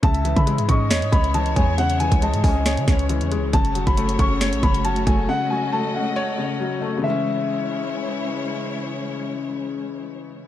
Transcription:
0.03 C#2 C#3 G#3 C#4 E4 C#5 E5 A5, kick, closed hi-hat
0.14 closed hi-hat
0.25 E3, closed hi-hat
0.36 C#3 B5, kick, closed hi-hat
0.47 G#3, closed hi-hat
0.58 G#2, closed hi-hat
0.69 G#2 C#4 D#5 C#6, kick, closed hi-hat
0.91 E2 C#5, snare, closed hi-hat
1.02 G#2, closed hi-hat
1.12 C#2 C#3 B5, kick, closed hi-hat
1.24 closed hi-hat
1.34 E3 A5, closed hi-hat
1.46 closed hi-hat
1.56 E2 G#3 C#5 G#5, kick, closed hi-hat
1.78 C#3 F#5, closed hi-hat
1.90 closed hi-hat
2.00 E3 G#5, closed hi-hat
2.12 C#2, kick, closed hi-hat
2.22 G#3 D#5 A5, closed hi-hat
2.34 G#2, closed hi-hat
2.44 C#2 C#4 G#5, kick, open hi-hat
2.66 C#5, snare, closed hi-hat
2.77 C#3, closed hi-hat
2.87 C#2 C#3 C#5, kick, snare, closed hi-hat
2.99 closed hi-hat
3.09 E3, closed hi-hat
3.21 E2, closed hi-hat
3.32 G#3, closed hi-hat
3.37 C#2
3.53 F#1 C#3 A3 F#4 C#5 A5, kick, closed hi-hat
3.65 closed hi-hat
3.75 E1 F#3, closed hi-hat
3.87 F#1 B5, kick, closed hi-hat
3.97 A3, closed hi-hat
4.09 closed hi-hat
4.19 F#1 C#4 C#6, kick, closed hi-hat
4.41 C#5, snare, closed hi-hat
4.53 A1, closed hi-hat
4.63 F#1 C#3 B5, kick, closed hi-hat
4.74 closed hi-hat
4.84 F#3 A5, closed hi-hat
4.96 closed hi-hat
5.07 F#1 A3 G#5, kick, closed hi-hat
5.29 C#3 D#5 F#5
5.50 F#3 G#5
5.72 A3 A5
5.94 C#4 F#5
6.16 C#5
6.38 C#3
6.60 F#3
6.81 A3
6.98 C#3
7.02 E3 G#3 C#4 E4 C#5 E5
7.06 G#3 C#4

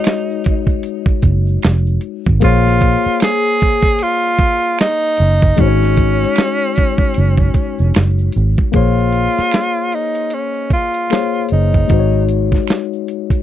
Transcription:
Already playing: G#3 D#4 F#4 C#5
0.04 finger snap, snare, closed hi-hat, shaker
0.30 shaker
0.44 kick, closed hi-hat, shaker
0.67 kick, shaker
0.83 closed hi-hat, shaker
1.06 kick, shaker
1.22 F#1, kick, closed hi-hat
1.47 shaker
1.62 F1, finger snap, snare, closed hi-hat, shaker
1.86 shaker
2.01 closed hi-hat
2.25 G#1, kick, shaker
2.40 A#1 A#3 G#4 C5, kick, closed hi-hat, shaker
2.45 F4 C#5
2.66 snare, shaker
2.81 kick, closed hi-hat
3.04 muted fingered electric bass stroke, shaker
3.20 G#4, finger snap, snare, closed hi-hat, shaker
3.46 shaker
3.60 kick, closed hi-hat, shaker
3.83 kick, shaker
3.99 closed hi-hat, shaker
4.03 F4
4.22 shaker
4.39 kick, closed hi-hat
4.62 shaker
4.79 D#4, finger snap, snare, closed hi-hat, shaker
5.02 shaker
5.17 F#1, closed hi-hat
5.41 kick, shaker
5.56 G#1 G#3 D#4 F#4, kick, closed hi-hat, shaker
5.61 C#4 C5
5.68 C#5
5.82 snare, shaker
5.97 kick, closed hi-hat, shaker
6.20 snare, shaker
6.36 finger snap, snare, closed hi-hat, shaker
6.62 shaker
6.76 kick, closed hi-hat, shaker
6.98 kick, shaker
7.14 F#1, closed hi-hat, shaker
7.38 kick, shaker
7.54 muted fingered electric bass stroke, kick, closed hi-hat, shaker
7.78 F1, shaker
7.94 F#1, finger snap, snare, closed hi-hat, shaker
8.18 shaker
8.32 G#1, closed hi-hat, shaker
8.57 kick, shaker
8.72 A#1 A#3 G#4 C5, kick, closed hi-hat, shaker
8.76 F4 C#5
8.98 shaker
9.12 closed hi-hat, shaker
9.36 muted fingered electric bass stroke, snare, shaker
9.51 finger snap, snare, closed hi-hat, shaker
9.78 shaker
9.92 D#4, closed hi-hat, shaker
10.15 closed hi-hat, shaker
10.30 C#4, closed hi-hat, shaker
10.54 shaker
10.70 F4, kick, closed hi-hat
10.93 closed hi-hat, shaker
11.10 A#3 G#4 C5 C#5, finger snap, snare, closed hi-hat, shaker
11.34 shaker
11.49 F#1 D#4, closed hi-hat
11.72 kick, shaker
11.88 G#1 G#3 D#4 F#4, kick, closed hi-hat, shaker
11.93 C5
11.99 C#5
12.13 shaker
12.29 closed hi-hat, shaker
12.52 kick, snare, shaker
12.68 finger snap, snare, closed hi-hat, shaker
12.93 shaker
13.07 closed hi-hat, shaker
13.30 kick, closed hi-hat, shaker

